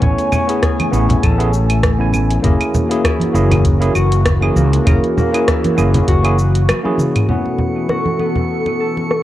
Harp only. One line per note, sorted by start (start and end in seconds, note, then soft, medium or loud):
0.00 0.32 C#4 medium
0.00 0.68 A4 medium
0.00 1.93 C#5 medium
0.32 0.92 C#4 medium
0.62 1.29 G#4 medium
0.93 3.83 C#4 medium
1.23 2.50 A4 medium
2.44 3.35 A#3 medium
3.05 5.47 E4 medium
3.35 4.56 A#3 medium
3.96 6.08 F#4 medium
4.56 5.17 A#3 medium
4.86 6.99 A#4 medium
5.17 5.77 A#3 loud
5.47 8.08 E4 medium
5.78 7.35 A#3 medium
6.08 7.89 F#4 medium
7.29 8.19 B3 medium
7.89 9.23 F#4 medium
8.20 9.23 B3 medium
8.80 9.23 A4 medium